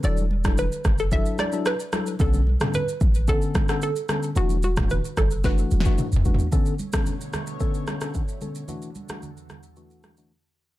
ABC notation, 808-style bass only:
X:1
M:4/4
L:1/16
Q:1/4=111
K:Bm
V:1 name="808-style bass" clef=bass
E,,,4- E,,, z F,,,3 z6 z | B,,,3 z3 A,,,3 z6 z | E,,,4- E,,, z F,,,4 E,,, F,,, z E,,, F,,, z | z16 |
z16 |]